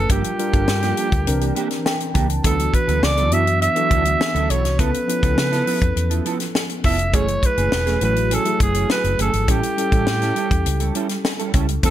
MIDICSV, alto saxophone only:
0, 0, Header, 1, 2, 480
1, 0, Start_track
1, 0, Tempo, 586510
1, 81, Time_signature, 4, 2, 24, 8
1, 9741, End_track
2, 0, Start_track
2, 0, Title_t, "Alto saxophone"
2, 0, Program_c, 0, 65
2, 0, Note_on_c, 0, 69, 89
2, 88, Note_off_c, 0, 69, 0
2, 93, Note_on_c, 0, 67, 80
2, 1495, Note_off_c, 0, 67, 0
2, 2009, Note_on_c, 0, 69, 81
2, 2246, Note_on_c, 0, 71, 89
2, 2258, Note_off_c, 0, 69, 0
2, 2486, Note_on_c, 0, 74, 92
2, 2498, Note_off_c, 0, 71, 0
2, 2727, Note_on_c, 0, 76, 99
2, 2739, Note_off_c, 0, 74, 0
2, 2956, Note_off_c, 0, 76, 0
2, 2961, Note_on_c, 0, 76, 101
2, 3685, Note_on_c, 0, 73, 82
2, 3697, Note_off_c, 0, 76, 0
2, 3921, Note_off_c, 0, 73, 0
2, 3926, Note_on_c, 0, 71, 90
2, 5330, Note_off_c, 0, 71, 0
2, 5610, Note_on_c, 0, 76, 94
2, 5849, Note_on_c, 0, 73, 95
2, 5862, Note_off_c, 0, 76, 0
2, 6103, Note_on_c, 0, 71, 100
2, 6115, Note_off_c, 0, 73, 0
2, 6572, Note_off_c, 0, 71, 0
2, 6582, Note_on_c, 0, 71, 90
2, 6825, Note_on_c, 0, 69, 93
2, 6837, Note_off_c, 0, 71, 0
2, 7053, Note_off_c, 0, 69, 0
2, 7060, Note_on_c, 0, 68, 82
2, 7275, Note_off_c, 0, 68, 0
2, 7298, Note_on_c, 0, 71, 87
2, 7513, Note_off_c, 0, 71, 0
2, 7543, Note_on_c, 0, 69, 77
2, 7779, Note_on_c, 0, 67, 88
2, 7791, Note_off_c, 0, 69, 0
2, 9212, Note_off_c, 0, 67, 0
2, 9700, Note_on_c, 0, 69, 85
2, 9741, Note_off_c, 0, 69, 0
2, 9741, End_track
0, 0, End_of_file